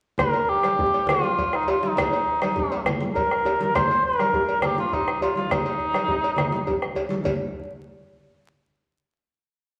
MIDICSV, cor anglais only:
0, 0, Header, 1, 2, 480
1, 0, Start_track
1, 0, Key_signature, -3, "major"
1, 0, Tempo, 295858
1, 299, Time_signature, 12, 3, 24, 8
1, 8936, Tempo, 286123
1, 16135, End_track
2, 0, Start_track
2, 0, Title_t, "Cor anglais"
2, 0, Program_c, 0, 69
2, 312, Note_on_c, 0, 70, 99
2, 794, Note_on_c, 0, 67, 90
2, 818, Note_off_c, 0, 70, 0
2, 1756, Note_off_c, 0, 67, 0
2, 1769, Note_on_c, 0, 65, 87
2, 2517, Note_on_c, 0, 63, 77
2, 2541, Note_off_c, 0, 65, 0
2, 2759, Note_on_c, 0, 65, 77
2, 2783, Note_off_c, 0, 63, 0
2, 2987, Note_on_c, 0, 63, 79
2, 3011, Note_off_c, 0, 65, 0
2, 3214, Note_off_c, 0, 63, 0
2, 3248, Note_on_c, 0, 63, 85
2, 3898, Note_off_c, 0, 63, 0
2, 3920, Note_on_c, 0, 63, 65
2, 4592, Note_off_c, 0, 63, 0
2, 5117, Note_on_c, 0, 70, 98
2, 6088, Note_on_c, 0, 72, 107
2, 6113, Note_off_c, 0, 70, 0
2, 6563, Note_off_c, 0, 72, 0
2, 6581, Note_on_c, 0, 70, 101
2, 7555, Note_on_c, 0, 67, 86
2, 7579, Note_off_c, 0, 70, 0
2, 7771, Note_off_c, 0, 67, 0
2, 7778, Note_on_c, 0, 65, 80
2, 7999, Note_on_c, 0, 63, 88
2, 8023, Note_off_c, 0, 65, 0
2, 8467, Note_off_c, 0, 63, 0
2, 8479, Note_on_c, 0, 65, 75
2, 8682, Note_off_c, 0, 65, 0
2, 8692, Note_on_c, 0, 65, 78
2, 8950, Note_on_c, 0, 63, 81
2, 8975, Note_off_c, 0, 65, 0
2, 11371, Note_off_c, 0, 63, 0
2, 16135, End_track
0, 0, End_of_file